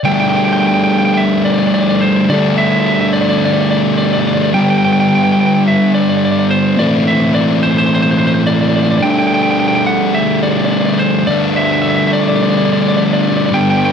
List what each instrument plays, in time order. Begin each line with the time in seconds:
0.04 distorted electric guitar D3 G3 A3 D4, lead electric guitar G5
0.14 lead electric guitar G5
0.20 lead electric guitar G5
0.29 lead electric guitar G5
0.36 lead electric guitar G5
0.45 lead electric guitar G5
0.53 lead electric guitar G5
0.60 lead electric guitar G5
0.67 lead electric guitar G5
0.74 lead electric guitar G5
0.84 lead electric guitar G5
0.90 lead electric guitar G5
0.98 lead electric guitar G5
1.05 lead electric guitar G5
1.14 lead electric guitar E5 G5
1.45 lead electric guitar D5
1.52 lead electric guitar D5
1.59 lead electric guitar D5
1.67 lead electric guitar D5
1.74 lead electric guitar D5
1.81 lead electric guitar D5
1.89 lead electric guitar D5
1.96 lead electric guitar D5
2.02 lead electric guitar C5
2.30 distorted electric guitar D3 G3 A3, lead electric guitar D5
2.34 distorted electric guitar D4
2.58 lead electric guitar E5
2.66 lead electric guitar E5
2.72 lead electric guitar E5
2.80 lead electric guitar E5
2.86 lead electric guitar E5
2.95 lead electric guitar E5
3.01 lead electric guitar E5
3.08 lead electric guitar E5
3.13 lead electric guitar D5
3.21 lead electric guitar D5
3.30 lead electric guitar D5
3.38 lead electric guitar D5
3.45 lead electric guitar D5
3.53 lead electric guitar D5
3.61 lead electric guitar D5
3.71 lead electric guitar D5
3.98 lead electric guitar D5
4.05 lead electric guitar D5
4.13 lead electric guitar D5
4.20 lead electric guitar D5
4.27 lead electric guitar D5
4.34 lead electric guitar D5
4.43 lead electric guitar D5
4.54 distorted electric guitar G2 D3 G3 B3 D4, lead electric guitar G5
4.61 lead electric guitar G5
4.70 lead electric guitar G5
4.78 lead electric guitar G5
4.85 lead electric guitar G5
4.93 lead electric guitar G5
5.00 lead electric guitar G5
5.09 lead electric guitar G5
5.15 lead electric guitar G5
5.24 lead electric guitar G5
5.32 lead electric guitar G5
5.40 lead electric guitar G5
5.46 lead electric guitar G5
5.54 lead electric guitar G5
5.68 lead electric guitar E5
5.94 lead electric guitar D5
6.01 lead electric guitar D5
6.09 lead electric guitar D5
6.17 lead electric guitar D5
6.25 lead electric guitar D5
6.32 lead electric guitar D5
6.39 lead electric guitar D5
6.51 lead electric guitar C5
6.77 distorted electric guitar A2 E3 A3 C4 E4, lead electric guitar D5
7.08 lead electric guitar E5
7.35 lead electric guitar D5
7.63 lead electric guitar C5
7.71 lead electric guitar C5
7.78 lead electric guitar C5
7.86 lead electric guitar C5
7.95 lead electric guitar C5
8.02 lead electric guitar C5
8.11 lead electric guitar C5
8.18 lead electric guitar C5
8.27 lead electric guitar C5
8.34 lead electric guitar C5
8.47 lead electric guitar D5
8.54 lead electric guitar D5
8.61 lead electric guitar D5
8.69 lead electric guitar D5
8.76 lead electric guitar D5
8.83 lead electric guitar D5
8.91 lead electric guitar D5
8.98 distorted electric guitar D3, lead electric guitar D5
9.02 distorted electric guitar G3 A3 D4, lead electric guitar G5
9.10 lead electric guitar G5
9.19 lead electric guitar G5
9.27 lead electric guitar G5
9.34 lead electric guitar G5
9.43 lead electric guitar G5
9.51 lead electric guitar G5
9.60 lead electric guitar G5
9.68 lead electric guitar G5
9.75 lead electric guitar G5
9.87 lead electric guitar F#5
10.14 lead electric guitar E5
10.43 lead electric guitar D5
10.50 lead electric guitar D5
10.57 lead electric guitar D5
10.65 lead electric guitar D5
10.71 lead electric guitar D5
10.80 lead electric guitar D5
10.86 lead electric guitar D5
10.94 lead electric guitar D5
10.99 lead electric guitar C5
11.27 distorted electric guitar D3 G3 A3 D4, lead electric guitar D5
11.56 lead electric guitar E5
11.65 lead electric guitar E5
11.72 lead electric guitar E5
11.82 lead electric guitar E5
11.89 lead electric guitar E5
11.96 lead electric guitar E5
12.07 lead electric guitar E5
12.13 lead electric guitar D5
12.21 lead electric guitar D5
12.28 lead electric guitar D5
12.35 lead electric guitar D5
12.43 lead electric guitar D5
12.50 lead electric guitar D5
12.57 lead electric guitar D5
12.65 lead electric guitar D5
12.73 lead electric guitar D5
12.82 lead electric guitar D5
12.88 lead electric guitar D5
12.97 lead electric guitar D5
13.06 lead electric guitar D5
13.13 lead electric guitar D5
13.22 lead electric guitar D5
13.29 lead electric guitar D5
13.37 lead electric guitar D5
13.46 lead electric guitar D5
13.51 distorted electric guitar G2 D3 G3 B3, lead electric guitar G5
13.55 distorted electric guitar D4
13.61 lead electric guitar G5
13.70 lead electric guitar G5
13.77 lead electric guitar G5
13.85 lead electric guitar G5